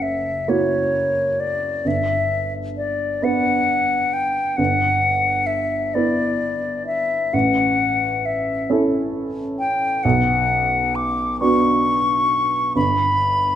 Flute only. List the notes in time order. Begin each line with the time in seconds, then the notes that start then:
0.02 E5
0.49 C#5
1.40 D5
1.87 E5
2.77 D5
3.24 F#5
4.13 G5
4.57 F#5
5.47 E5
5.94 D5
6.87 E5
7.34 F#5
8.26 E5
9.59 G5
10.03 F#5
10.95 D6
11.40 C#6
12.76 B5